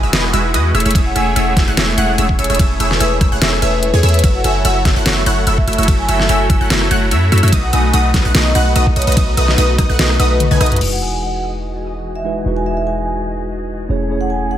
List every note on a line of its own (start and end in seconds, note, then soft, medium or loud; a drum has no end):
0.00 0.11 E1 medium
0.00 0.71 E3 medium
0.00 0.11 G#3 medium
0.00 0.71 D#4 medium
0.00 0.10 E4 medium
0.00 0.71 F#4 medium
0.00 0.10 F#4 medium
0.00 0.71 G#4 medium
0.00 0.11 B4 medium
0.00 0.10 E5 loud
0.00 0.11 E6 medium
0.13 0.31 E1 loud
0.13 0.31 G#3 medium
0.13 0.31 E4 medium
0.13 0.31 F#4 medium
0.13 0.31 B4 medium
0.13 0.31 D#5 medium
0.13 0.31 D#6 medium
0.13 snare loud
0.13 closed hi-hat medium
0.13 ride soft
0.24 cross-stick medium
0.33 0.55 E1 loud
0.33 0.52 G#3 loud
0.33 0.52 E4 medium
0.33 0.52 F#4 medium
0.33 0.52 B4 medium
0.33 0.52 E5 loud
0.33 0.52 E6 loud
0.33 closed hi-hat medium
0.54 0.72 E2 medium
0.54 0.72 G#3 medium
0.54 0.72 E4 medium
0.54 0.72 F#4 medium
0.54 0.72 B4 medium
0.54 0.72 D#5 medium
0.54 0.72 D#6 medium
0.54 closed hi-hat medium
0.74 0.83 E1 loud
0.74 4.20 G#3 medium
0.74 4.20 A3 medium
0.74 0.83 A3 medium
0.74 4.20 C#4 medium
0.74 0.83 E4 medium
0.74 0.83 G#4 medium
0.74 0.83 C#5 medium
0.74 0.83 E5 medium
0.74 0.83 E6 loud
0.74 closed hi-hat soft
0.80 closed hi-hat medium
0.85 0.93 E1 loud
0.85 0.93 A3 medium
0.85 0.93 E4 medium
0.85 0.93 G#4 medium
0.85 0.93 C#5 medium
0.85 0.93 E5 medium
0.85 0.93 E6 medium
0.85 closed hi-hat medium
0.91 closed hi-hat medium
0.95 1.14 E1 loud
0.95 1.13 A3 medium
0.95 1.13 E4 medium
0.95 1.13 G#4 medium
0.95 1.13 C#5 medium
0.95 1.13 E5 loud
0.95 1.13 E6 loud
0.95 kick loud
0.95 closed hi-hat medium
0.95 ride soft
1.06 1.14 F#5 medium
1.16 1.34 E1 loud
1.16 1.34 A3 medium
1.16 1.34 E4 medium
1.16 1.34 G#4 medium
1.16 1.34 C#5 medium
1.16 1.34 E5 loud
1.16 1.34 G#5 medium
1.16 1.34 E6 loud
1.16 closed hi-hat medium
1.36 1.55 E1 loud
1.36 1.54 A3 medium
1.36 1.54 E4 medium
1.36 1.54 G#4 medium
1.36 1.54 C#5 medium
1.36 1.54 E5 loud
1.36 1.55 F#5 medium
1.36 1.54 E6 loud
1.36 closed hi-hat medium
1.57 1.65 E1 loud
1.57 1.66 A3 loud
1.57 1.66 E4 medium
1.57 1.66 G#4 medium
1.57 1.66 C#5 medium
1.57 1.66 E6 loud
1.57 kick loud
1.57 snare soft
1.57 closed hi-hat medium
1.68 1.75 E1 loud
1.68 1.75 A3 medium
1.68 1.75 E4 medium
1.68 1.75 G#4 medium
1.68 1.75 C#5 medium
1.68 1.75 F#5 loud
1.68 1.75 F#6 medium
1.77 1.96 E1 loud
1.77 1.95 A3 medium
1.77 1.95 E4 medium
1.77 1.95 G#4 medium
1.77 1.95 C#5 medium
1.77 1.95 E5 medium
1.77 1.95 E6 loud
1.77 snare loud
1.77 closed hi-hat medium
1.77 ride soft
1.88 1.96 E5 medium
1.97 2.16 E1 loud
1.97 2.16 A3 loud
1.97 2.16 E4 medium
1.97 2.16 G#4 medium
1.97 2.16 C#5 medium
1.97 2.05 F#5 medium
1.97 2.16 F#5 loud
1.97 2.16 F#6 loud
1.97 closed hi-hat medium
2.08 2.15 F#5 medium
2.18 2.37 E1 loud
2.18 2.36 A3 medium
2.18 2.36 E4 medium
2.18 2.36 G#4 medium
2.18 2.36 C#5 medium
2.18 2.37 E5 medium
2.18 2.36 E6 medium
2.18 closed hi-hat medium
2.29 kick medium
2.39 2.48 E1 loud
2.39 2.47 A3 medium
2.39 2.47 E4 medium
2.39 2.47 G#4 medium
2.39 2.47 C#5 medium
2.39 2.57 C#5 loud
2.39 2.47 E5 loud
2.39 2.47 E6 loud
2.39 closed hi-hat soft
2.44 closed hi-hat medium
2.50 2.57 E1 loud
2.50 2.57 A3 medium
2.50 2.57 E4 medium
2.50 2.57 G#4 medium
2.50 2.57 C#5 medium
2.50 2.57 E5 loud
2.50 2.57 E6 medium
2.50 closed hi-hat soft
2.55 closed hi-hat medium
2.59 2.78 E1 medium
2.59 2.78 A3 loud
2.59 2.78 E4 medium
2.59 2.78 G#4 medium
2.59 2.78 C#5 medium
2.59 2.78 E5 loud
2.59 2.78 E6 loud
2.59 kick loud
2.59 closed hi-hat medium
2.59 ride soft
2.80 2.98 E1 loud
2.80 2.98 A3 medium
2.80 2.98 E4 medium
2.80 2.98 G#4 medium
2.80 2.98 C#5 medium
2.80 2.98 E5 medium
2.80 2.98 E6 loud
2.80 closed hi-hat medium
2.91 3.09 B4 medium
2.91 snare soft
3.00 3.19 E1 medium
3.00 3.19 A3 medium
3.00 3.19 E4 medium
3.00 3.19 G#4 medium
3.00 3.19 C#5 medium
3.00 3.19 E5 loud
3.00 3.19 E6 loud
3.00 closed hi-hat medium
3.21 3.30 E1 loud
3.21 3.30 A3 medium
3.21 3.30 E4 medium
3.21 3.30 G#4 medium
3.21 3.30 C#5 medium
3.21 3.30 E5 loud
3.21 3.30 E6 loud
3.21 kick loud
3.21 cross-stick medium
3.21 closed hi-hat medium
3.32 3.40 E1 loud
3.32 3.39 A3 medium
3.32 3.39 E4 medium
3.32 3.39 G#4 medium
3.32 3.39 C#5 medium
3.32 3.39 F#5 loud
3.32 3.39 F#6 medium
3.41 3.60 E1 loud
3.41 3.60 A3 medium
3.41 3.60 E4 medium
3.41 3.60 G#4 medium
3.41 3.60 C#5 medium
3.41 3.60 E5 medium
3.41 3.60 E6 loud
3.41 snare loud
3.41 closed hi-hat medium
3.41 ride soft
3.53 cross-stick medium
3.62 3.91 E1 loud
3.62 3.91 A3 loud
3.62 3.91 E4 medium
3.62 3.91 G#4 medium
3.62 3.71 B4 medium
3.62 3.91 C#5 medium
3.62 3.91 E5 loud
3.62 3.91 E6 loud
3.62 closed hi-hat medium
3.73 3.79 B4 medium
3.83 3.90 B4 medium
3.83 closed hi-hat medium
3.93 4.01 E2 medium
3.93 4.01 A3 medium
3.93 4.01 E4 medium
3.93 4.01 G#4 medium
3.93 4.01 C#5 medium
3.93 4.01 G#5 medium
3.93 4.01 G#6 medium
4.03 4.22 E2 loud
4.03 4.21 A3 loud
4.03 4.21 E4 medium
4.03 4.21 G#4 medium
4.03 4.21 C#5 medium
4.03 4.21 E5 loud
4.03 4.21 E6 loud
4.03 closed hi-hat soft
4.09 closed hi-hat medium
4.14 4.20 B4 medium
4.14 closed hi-hat soft
4.19 closed hi-hat medium
4.23 4.42 F#1 medium
4.23 7.49 F#3 medium
4.23 4.42 A3 loud
4.23 7.49 E4 medium
4.23 4.42 E4 medium
4.23 4.42 F#4 medium
4.23 7.49 A4 medium
4.23 4.42 C#5 medium
4.23 4.42 E5 loud
4.23 4.42 E6 loud
4.23 kick loud
4.23 closed hi-hat medium
4.23 ride soft
4.35 4.42 F#5 medium
4.44 4.63 F#1 loud
4.44 4.63 A3 medium
4.44 4.63 E4 medium
4.44 4.63 F#4 medium
4.44 4.63 C#5 medium
4.44 4.63 E5 loud
4.44 4.63 G#5 medium
4.44 4.63 E6 loud
4.44 closed hi-hat medium
4.65 4.83 F#1 loud
4.65 4.83 A3 medium
4.65 4.83 E4 medium
4.65 4.83 F#4 medium
4.65 4.83 C#5 medium
4.65 4.83 E5 loud
4.65 4.83 F#5 medium
4.65 4.83 E6 loud
4.65 closed hi-hat medium
4.85 4.94 F#1 loud
4.85 4.95 A3 medium
4.85 4.95 E4 medium
4.85 4.95 F#4 medium
4.85 4.95 C#5 medium
4.85 4.95 E5 loud
4.85 4.95 E6 loud
4.85 kick loud
4.85 snare soft
4.85 closed hi-hat medium
4.96 5.04 F#1 loud
4.96 5.04 A3 medium
4.96 5.04 E4 medium
4.96 5.04 F#4 medium
4.96 5.04 C#5 medium
4.96 5.04 F#5 loud
4.96 5.04 F#6 loud
5.06 5.24 F#1 loud
5.06 5.24 A3 medium
5.06 5.24 E4 medium
5.06 5.24 F#4 medium
5.06 5.24 C#5 medium
5.06 5.24 E5 medium
5.06 5.24 E6 medium
5.06 snare loud
5.06 closed hi-hat medium
5.06 ride soft
5.26 5.45 F#1 medium
5.26 5.45 A3 loud
5.26 5.45 E4 medium
5.26 5.45 F#4 medium
5.26 5.45 C#5 medium
5.26 5.45 F#5 loud
5.26 5.45 F#6 loud
5.26 closed hi-hat medium
5.47 5.66 F#1 medium
5.47 5.65 A3 medium
5.47 5.65 E4 medium
5.47 5.65 F#4 medium
5.47 5.65 C#5 medium
5.47 5.65 E5 medium
5.47 5.65 E6 medium
5.47 closed hi-hat medium
5.58 5.76 E5 medium
5.58 kick medium
5.67 5.76 F#1 loud
5.67 5.76 A3 medium
5.67 5.76 E4 medium
5.67 5.76 F#4 medium
5.67 5.76 C#5 medium
5.67 5.76 E5 medium
5.67 5.76 E6 medium
5.67 closed hi-hat soft
5.73 closed hi-hat medium
5.78 5.86 F#1 loud
5.78 5.86 A3 medium
5.78 5.86 E4 medium
5.78 5.86 F#4 medium
5.78 5.86 C#5 medium
5.78 5.86 E5 loud
5.78 5.86 E6 medium
5.78 closed hi-hat soft
5.83 closed hi-hat medium
5.88 6.07 F#1 medium
5.88 6.06 A3 loud
5.88 6.06 E6 loud
5.88 kick loud
5.88 closed hi-hat medium
5.88 ride medium
5.99 6.07 G#5 medium
6.08 6.27 F#1 loud
6.08 6.27 A3 medium
6.08 6.27 E4 medium
6.08 6.27 F#4 medium
6.08 6.27 C#5 medium
6.08 6.16 E5 medium
6.08 6.27 E5 loud
6.08 6.27 E6 medium
6.08 closed hi-hat medium
6.20 6.26 E5 medium
6.20 snare soft
6.29 6.48 F#1 loud
6.29 6.48 A3 medium
6.29 6.47 E4 medium
6.29 6.48 F#4 medium
6.29 6.48 C#5 medium
6.29 6.48 E5 loud
6.29 6.61 G#5 medium
6.29 6.47 E6 loud
6.29 closed hi-hat medium
6.50 6.59 F#1 loud
6.50 6.59 A3 loud
6.50 6.59 E4 medium
6.50 6.59 F#4 medium
6.50 6.59 C#5 medium
6.50 6.59 E6 loud
6.50 kick loud
6.50 closed hi-hat medium
6.61 6.68 F#1 loud
6.61 6.68 A3 medium
6.61 6.68 E4 medium
6.61 6.68 F#4 medium
6.61 6.68 C#5 medium
6.61 6.68 F#5 medium
6.61 6.68 F#6 medium
6.70 6.89 F#1 loud
6.70 6.89 A3 medium
6.70 6.89 E4 medium
6.70 6.89 F#4 medium
6.70 6.89 C#5 medium
6.70 6.89 E5 medium
6.70 6.89 E6 medium
6.70 snare loud
6.70 closed hi-hat medium
6.70 ride soft
6.81 cross-stick medium
6.91 7.13 F#1 loud
6.91 7.09 A3 loud
6.91 7.09 E4 medium
6.91 7.09 F#4 medium
6.91 7.09 C#5 medium
6.91 7.09 F#5 loud
6.91 7.09 F#6 loud
6.91 closed hi-hat medium
7.11 7.30 F#2 loud
7.11 7.30 A3 medium
7.11 7.30 E4 medium
7.11 7.30 F#4 medium
7.11 7.30 C#5 medium
7.11 7.30 E5 medium
7.11 7.30 E6 medium
7.11 closed hi-hat medium
7.32 7.41 F#2 loud
7.32 7.40 A3 medium
7.32 7.40 E4 medium
7.32 7.40 F#4 medium
7.32 7.40 C#5 medium
7.32 7.40 E5 loud
7.32 7.40 E6 medium
7.32 closed hi-hat soft
7.38 closed hi-hat medium
7.43 7.51 F#2 loud
7.43 7.50 A3 medium
7.43 7.50 E4 medium
7.43 7.50 F#4 medium
7.43 7.50 C#5 medium
7.43 7.50 E5 medium
7.43 7.50 E6 medium
7.43 closed hi-hat soft
7.48 closed hi-hat medium
7.52 7.71 B1 loud
7.52 10.78 A3 medium
7.52 10.78 B3 medium
7.52 10.78 D#4 medium
7.52 7.71 B4 medium
7.52 7.71 D#6 loud
7.52 kick loud
7.52 closed hi-hat medium
7.52 ride medium
7.63 7.71 F#5 medium
7.73 7.92 B1 loud
7.73 7.91 A3 medium
7.73 7.91 D#4 medium
7.73 7.91 F#4 medium
7.73 7.91 B4 medium
7.73 7.91 D#5 loud
7.73 7.92 G#5 medium
7.73 7.91 D#6 loud
7.73 closed hi-hat medium
7.93 8.12 B1 loud
7.93 8.12 A3 medium
7.93 8.12 D#4 medium
7.93 8.12 F#4 medium
7.93 8.12 B4 medium
7.93 8.12 D#5 loud
7.93 8.12 F#5 medium
7.93 8.12 D#6 loud
7.93 closed hi-hat medium
8.14 8.23 B1 loud
8.14 8.23 A3 medium
8.14 8.23 D#4 medium
8.14 8.23 F#4 medium
8.14 8.23 B4 medium
8.14 8.23 D#6 loud
8.14 kick loud
8.14 snare soft
8.14 closed hi-hat medium
8.25 8.33 B1 medium
8.25 8.32 A3 medium
8.25 8.32 D#4 medium
8.25 8.32 F#4 medium
8.25 8.32 B4 medium
8.25 8.32 F#5 loud
8.25 8.32 F#6 medium
8.35 8.53 B1 loud
8.35 8.53 A3 medium
8.35 8.53 D#4 medium
8.35 8.53 F#4 medium
8.35 8.53 B4 medium
8.35 8.53 D#5 loud
8.35 8.53 D#6 loud
8.35 snare loud
8.35 closed hi-hat medium
8.35 ride soft
8.45 8.53 D#5 medium
8.55 8.74 B1 loud
8.55 8.73 A3 loud
8.55 8.73 D#4 medium
8.55 8.73 F#4 medium
8.55 8.73 B4 medium
8.55 8.62 F#5 medium
8.55 8.73 F#5 loud
8.55 8.74 F#6 loud
8.55 closed hi-hat medium
8.66 8.72 F#5 medium
8.76 8.94 B1 medium
8.76 8.94 A3 medium
8.76 8.94 D#4 medium
8.76 8.94 F#4 medium
8.76 8.94 B4 medium
8.76 8.94 D#5 medium
8.76 8.94 D#6 medium
8.76 closed hi-hat medium
8.87 kick medium
8.96 9.05 B1 loud
8.96 9.05 A3 medium
8.96 9.05 D#4 medium
8.96 9.05 F#4 medium
8.96 9.05 B4 medium
8.96 9.15 C#5 medium
8.96 9.05 D#5 medium
8.96 9.05 D#6 loud
8.96 closed hi-hat soft
9.02 closed hi-hat medium
9.07 9.15 B1 loud
9.07 9.14 A3 medium
9.07 9.14 D#4 medium
9.07 9.15 F#4 medium
9.07 9.15 B4 medium
9.07 9.14 D#5 medium
9.07 9.15 D#6 medium
9.07 closed hi-hat soft
9.12 closed hi-hat medium
9.17 9.36 B1 medium
9.17 9.35 A3 medium
9.17 9.35 D#4 medium
9.17 9.35 F#4 medium
9.17 9.35 B4 medium
9.17 9.35 D#5 loud
9.17 9.35 D#6 loud
9.17 kick loud
9.17 closed hi-hat medium
9.17 ride medium
9.37 9.56 B1 loud
9.37 9.56 A3 medium
9.37 9.56 D#4 medium
9.37 9.56 F#4 medium
9.37 9.56 B4 medium
9.37 9.56 D#5 loud
9.37 9.56 D#6 loud
9.37 closed hi-hat medium
9.48 9.66 B4 medium
9.48 snare soft
9.58 9.77 B1 loud
9.58 9.76 A3 medium
9.58 9.76 D#4 medium
9.58 9.76 F#4 medium
9.58 9.76 B4 medium
9.58 9.76 D#5 loud
9.58 9.76 D#6 loud
9.58 closed hi-hat medium
9.78 9.87 B1 loud
9.78 9.88 A3 medium
9.78 9.88 D#4 medium
9.78 9.88 F#4 medium
9.78 9.88 B4 medium
9.78 9.88 D#5 loud
9.78 9.88 D#6 loud
9.78 kick loud
9.78 cross-stick medium
9.78 closed hi-hat medium
9.89 9.97 B1 loud
9.89 9.97 A3 medium
9.89 9.97 D#4 medium
9.89 9.97 F#4 medium
9.89 9.97 B4 medium
9.89 9.97 F#5 loud
9.89 9.97 F#6 loud
9.99 10.18 B1 loud
9.99 10.17 A3 medium
9.99 10.17 D#4 medium
9.99 10.17 F#4 medium
9.99 10.17 B4 medium
9.99 10.17 D#5 medium
9.99 10.17 D#6 medium
9.99 snare loud
9.99 closed hi-hat medium
9.99 ride soft
10.10 cross-stick medium
10.19 10.49 B1 loud
10.19 10.49 A3 medium
10.19 10.49 D#4 medium
10.19 10.49 F#4 medium
10.19 10.28 B4 medium
10.19 10.49 B4 medium
10.19 10.49 D#5 loud
10.19 10.48 D#6 loud
10.19 closed hi-hat medium
10.31 10.37 B4 medium
10.40 10.47 B4 medium
10.40 closed hi-hat medium
10.40 high tom medium
10.51 10.59 B1 medium
10.51 10.58 A3 medium
10.51 10.58 D#4 medium
10.51 10.58 F#4 medium
10.51 10.58 B4 medium
10.51 10.58 G#5 medium
10.51 10.58 G#6 medium
10.51 high tom medium
10.61 10.79 B1 loud
10.61 10.79 A3 medium
10.61 10.79 D#4 medium
10.61 10.79 F#4 medium
10.61 10.79 B4 medium
10.61 10.79 D#5 loud
10.61 10.79 D#6 loud
10.61 cross-stick medium
10.61 closed hi-hat soft
10.66 closed hi-hat medium
10.71 10.78 B4 medium
10.71 closed hi-hat medium
10.71 mid tom medium
10.76 12.22 G#3 medium
10.76 12.22 D#4 medium
10.76 closed hi-hat medium
10.81 12.44 E1 medium
10.81 13.86 E3 medium
10.81 12.23 E4 medium
10.81 13.86 F#4 medium
10.81 12.23 F#4 medium
10.81 13.86 G#4 medium
10.81 10.88 B4 medium
10.81 12.24 B4 medium
10.81 13.86 D#5 medium
10.81 crash medium
10.92 11.00 F#5 medium
11.02 11.20 G#5 medium
11.22 11.41 F#5 medium
12.15 12.34 E5 medium
12.24 12.42 G#3 medium
12.24 12.43 D#4 medium
12.24 12.43 E4 medium
12.24 12.44 F#4 medium
12.24 12.44 B4 medium
12.44 13.88 E1 medium
12.44 13.86 G#3 medium
12.44 13.87 D#4 medium
12.44 13.87 E4 medium
12.44 13.88 F#4 medium
12.44 13.88 B4 medium
12.57 12.64 G#5 medium
12.66 12.73 E5 medium
12.77 12.83 E5 medium
12.87 13.18 G#5 medium
13.88 14.58 E1 medium
13.88 14.07 A3 medium
13.88 14.58 A3 medium
13.88 14.07 C#4 medium
13.88 14.58 C#4 medium
13.88 14.08 E4 medium
13.88 14.58 G#4 medium
13.88 14.08 G#4 medium
13.88 14.08 C#5 medium
14.08 14.58 A3 medium
14.08 14.58 C#4 medium
14.08 14.58 E4 medium
14.08 14.58 G#4 medium
14.08 14.58 C#5 loud
14.21 14.29 F#5 medium
14.30 14.49 G#5 medium
14.51 14.58 F#5 medium